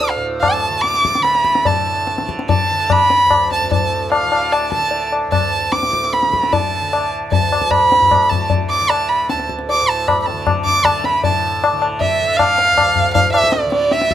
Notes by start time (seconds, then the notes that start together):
Already playing: D2 A2 D3
0.00 D6, tabla tin
0.10 F5
0.16 A2
0.41 A5, tabla na, tabla ge
0.69 D3
0.81 D6, tabla te
0.94 tabla te
1.05 tabla ke
1.15 tabla te
1.20 D3 B5
1.25 tabla te
1.35 tabla te
1.45 tabla ke
1.55 tabla te
1.65 A2 A5, tabla tin, tabla ge
2.07 tabla te
2.18 D3, tabla te
2.29 tabla ke
2.39 tabla te
2.49 A5, tabla tin, tabla ge
2.72 D3
2.90 B5, tabla na, tabla ge
3.10 tabla te
3.25 D2
3.31 tabla na, tabla ge
3.52 A5, tabla te
3.61 tabla ge
3.71 A2 A5, tabla tin, tabla ge
4.12 F5, tabla na
4.26 D3
4.32 tabla na
4.52 A5, tabla na
4.72 A5, tabla ke
4.77 D3
4.91 tabla tin
5.12 tabla na
5.27 D2
5.32 A5, tabla na, tabla ge
5.72 D6, tabla te
5.81 A2, tabla te
5.93 tabla ke
6.04 tabla te
6.13 B5, tabla te
6.23 tabla te
6.29 D3
6.33 tabla ke
6.43 tabla te
6.53 A5, tabla tin, tabla ge
6.82 D3
6.93 tabla na
7.30 D2 A5, tabla tin, tabla ge
7.52 tabla na
7.62 tabla ke
7.71 B5, tabla na, tabla ge
7.80 A2
7.92 tabla te
8.02 tabla ge
8.11 tabla na, tabla ge
8.29 D3 A5, tabla ge
8.50 tabla tin, tabla ge
8.70 D6
8.81 D3
8.90 A5, tabla na
9.08 B5
9.29 D2 A5, tabla te
9.39 tabla te
9.49 tabla ke
9.59 tabla te
9.69 D6, tabla tin
9.81 A2
9.89 A5
10.08 B5, tabla na, tabla ge
10.22 B5
10.26 A5, tabla te
10.33 D3
10.47 tabla na, tabla ge
10.65 D6, tabla ge
10.82 D3 A5, tabla na, tabla ge
11.04 B5, tabla te
11.24 A2 A5, tabla tin, tabla ge
11.64 tabla na
11.73 D3
11.82 tabla na
12.00 E5, tabla tin, tabla ge
12.21 D3
12.37 F5, tabla na, tabla ge
12.58 tabla te
12.71 D2
12.78 tabla na, tabla ge
12.96 tabla ge
13.14 F5, tabla tin, tabla ge
13.20 A2
13.33 E5, tabla na
13.44 tabla ke
13.52 D5, tabla te
13.66 D3
13.72 D5, tabla te
13.91 E5, tabla te
14.02 tabla te
14.11 tabla ke